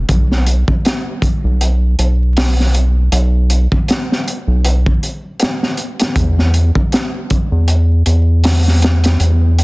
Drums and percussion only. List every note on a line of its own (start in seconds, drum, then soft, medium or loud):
0.09 kick medium
0.09 closed hi-hat medium
0.32 snare soft
0.47 closed hi-hat medium
0.68 kick medium
0.85 snare loud
0.85 closed hi-hat medium
1.22 kick loud
1.22 closed hi-hat medium
1.61 closed hi-hat medium
1.99 closed hi-hat medium
2.37 snare loud
2.37 open hi-hat medium
2.60 snare soft
2.75 closed hi-hat medium
3.12 closed hi-hat medium
3.50 closed hi-hat medium
3.72 kick medium
3.88 snare loud
3.88 closed hi-hat medium
4.12 snare soft
4.28 closed hi-hat medium
4.65 closed hi-hat medium
4.86 kick medium
5.03 closed hi-hat medium
5.40 snare loud
5.40 closed hi-hat medium
5.63 snare soft
5.77 closed hi-hat medium
6.00 snare medium
6.00 closed hi-hat medium
6.16 kick loud
6.16 closed hi-hat medium
6.39 snare soft
6.54 closed hi-hat medium
6.75 kick loud
6.92 snare loud
6.92 closed hi-hat medium
7.30 kick medium
7.30 closed hi-hat medium
7.68 closed hi-hat medium
8.06 closed hi-hat medium
8.44 snare loud
8.44 open hi-hat medium
8.68 snare soft
8.82 snare medium
8.82 closed hi-hat medium
9.04 snare loud
9.04 closed hi-hat medium
9.20 closed hi-hat medium
9.59 closed hi-hat medium